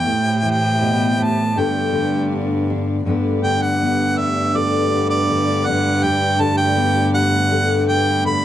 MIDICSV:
0, 0, Header, 1, 5, 480
1, 0, Start_track
1, 0, Key_signature, 1, "major"
1, 0, Tempo, 741656
1, 49, Time_signature, 4, 2, 24, 8
1, 5468, End_track
2, 0, Start_track
2, 0, Title_t, "Harmonica"
2, 0, Program_c, 0, 22
2, 0, Note_on_c, 0, 79, 94
2, 300, Note_off_c, 0, 79, 0
2, 327, Note_on_c, 0, 79, 85
2, 801, Note_on_c, 0, 81, 79
2, 810, Note_off_c, 0, 79, 0
2, 1033, Note_on_c, 0, 79, 68
2, 1043, Note_off_c, 0, 81, 0
2, 1504, Note_off_c, 0, 79, 0
2, 2223, Note_on_c, 0, 79, 88
2, 2339, Note_on_c, 0, 78, 80
2, 2349, Note_off_c, 0, 79, 0
2, 2704, Note_on_c, 0, 76, 84
2, 2713, Note_off_c, 0, 78, 0
2, 2955, Note_on_c, 0, 74, 91
2, 2964, Note_off_c, 0, 76, 0
2, 3296, Note_off_c, 0, 74, 0
2, 3300, Note_on_c, 0, 74, 93
2, 3665, Note_on_c, 0, 78, 95
2, 3675, Note_off_c, 0, 74, 0
2, 3903, Note_on_c, 0, 79, 109
2, 3913, Note_off_c, 0, 78, 0
2, 4146, Note_on_c, 0, 81, 97
2, 4156, Note_off_c, 0, 79, 0
2, 4250, Note_off_c, 0, 81, 0
2, 4254, Note_on_c, 0, 79, 88
2, 4588, Note_off_c, 0, 79, 0
2, 4623, Note_on_c, 0, 78, 99
2, 5072, Note_off_c, 0, 78, 0
2, 5103, Note_on_c, 0, 79, 100
2, 5321, Note_off_c, 0, 79, 0
2, 5346, Note_on_c, 0, 83, 109
2, 5468, Note_off_c, 0, 83, 0
2, 5468, End_track
3, 0, Start_track
3, 0, Title_t, "String section"
3, 0, Program_c, 1, 48
3, 0, Note_on_c, 1, 64, 74
3, 0, Note_on_c, 1, 76, 84
3, 63, Note_on_c, 1, 67, 75
3, 66, Note_on_c, 1, 72, 68
3, 71, Note_on_c, 1, 57, 86
3, 984, Note_off_c, 1, 64, 0
3, 987, Note_off_c, 1, 76, 0
3, 998, Note_off_c, 1, 67, 0
3, 1005, Note_on_c, 1, 67, 55
3, 1007, Note_on_c, 1, 74, 70
3, 1009, Note_off_c, 1, 72, 0
3, 1011, Note_on_c, 1, 71, 58
3, 1012, Note_on_c, 1, 62, 60
3, 1962, Note_off_c, 1, 67, 0
3, 1963, Note_off_c, 1, 74, 0
3, 1965, Note_off_c, 1, 71, 0
3, 1966, Note_off_c, 1, 57, 0
3, 1966, Note_off_c, 1, 62, 0
3, 1979, Note_on_c, 1, 62, 69
3, 1981, Note_on_c, 1, 57, 84
3, 1984, Note_on_c, 1, 71, 80
3, 1985, Note_on_c, 1, 74, 91
3, 1988, Note_on_c, 1, 67, 76
3, 5468, Note_off_c, 1, 57, 0
3, 5468, Note_off_c, 1, 62, 0
3, 5468, Note_off_c, 1, 67, 0
3, 5468, Note_off_c, 1, 71, 0
3, 5468, Note_off_c, 1, 74, 0
3, 5468, End_track
4, 0, Start_track
4, 0, Title_t, "Nylon-string guitar"
4, 0, Program_c, 2, 24
4, 28, Note_on_c, 2, 45, 69
4, 276, Note_on_c, 2, 52, 66
4, 519, Note_off_c, 2, 45, 0
4, 525, Note_on_c, 2, 47, 57
4, 760, Note_off_c, 2, 47, 0
4, 762, Note_on_c, 2, 45, 57
4, 975, Note_off_c, 2, 52, 0
4, 1006, Note_off_c, 2, 45, 0
4, 1008, Note_on_c, 2, 43, 68
4, 1012, Note_on_c, 2, 50, 56
4, 1021, Note_on_c, 2, 59, 55
4, 1023, Note_on_c, 2, 62, 51
4, 1025, Note_on_c, 2, 69, 59
4, 1239, Note_off_c, 2, 50, 0
4, 1247, Note_on_c, 2, 50, 58
4, 1491, Note_off_c, 2, 59, 0
4, 1498, Note_on_c, 2, 59, 53
4, 1739, Note_off_c, 2, 62, 0
4, 1747, Note_on_c, 2, 62, 59
4, 1945, Note_off_c, 2, 43, 0
4, 1948, Note_off_c, 2, 59, 0
4, 1952, Note_off_c, 2, 62, 0
4, 1953, Note_off_c, 2, 69, 0
4, 1976, Note_off_c, 2, 50, 0
4, 1976, Note_on_c, 2, 43, 68
4, 1984, Note_on_c, 2, 50, 59
4, 1986, Note_on_c, 2, 59, 58
4, 1991, Note_on_c, 2, 62, 60
4, 1999, Note_on_c, 2, 69, 62
4, 2214, Note_off_c, 2, 50, 0
4, 2222, Note_on_c, 2, 50, 58
4, 2462, Note_off_c, 2, 59, 0
4, 2465, Note_on_c, 2, 59, 52
4, 2698, Note_off_c, 2, 62, 0
4, 2700, Note_on_c, 2, 62, 59
4, 2942, Note_off_c, 2, 69, 0
4, 2944, Note_on_c, 2, 69, 65
4, 3181, Note_off_c, 2, 59, 0
4, 3189, Note_on_c, 2, 59, 58
4, 3419, Note_off_c, 2, 50, 0
4, 3426, Note_on_c, 2, 50, 65
4, 3658, Note_off_c, 2, 62, 0
4, 3673, Note_on_c, 2, 62, 70
4, 3867, Note_off_c, 2, 43, 0
4, 3873, Note_off_c, 2, 59, 0
4, 3875, Note_off_c, 2, 62, 0
4, 3901, Note_on_c, 2, 43, 78
4, 3921, Note_off_c, 2, 69, 0
4, 4128, Note_off_c, 2, 50, 0
4, 4135, Note_on_c, 2, 50, 73
4, 4376, Note_on_c, 2, 59, 61
4, 4616, Note_on_c, 2, 62, 58
4, 4862, Note_on_c, 2, 69, 70
4, 5094, Note_off_c, 2, 59, 0
4, 5106, Note_on_c, 2, 59, 59
4, 5332, Note_off_c, 2, 50, 0
4, 5340, Note_on_c, 2, 50, 70
4, 5468, Note_off_c, 2, 43, 0
4, 5468, Note_off_c, 2, 50, 0
4, 5468, Note_off_c, 2, 59, 0
4, 5468, Note_off_c, 2, 62, 0
4, 5468, Note_off_c, 2, 69, 0
4, 5468, End_track
5, 0, Start_track
5, 0, Title_t, "Cello"
5, 0, Program_c, 3, 42
5, 44, Note_on_c, 3, 45, 81
5, 1011, Note_on_c, 3, 43, 74
5, 1021, Note_off_c, 3, 45, 0
5, 1955, Note_off_c, 3, 43, 0
5, 1971, Note_on_c, 3, 43, 82
5, 5468, Note_off_c, 3, 43, 0
5, 5468, End_track
0, 0, End_of_file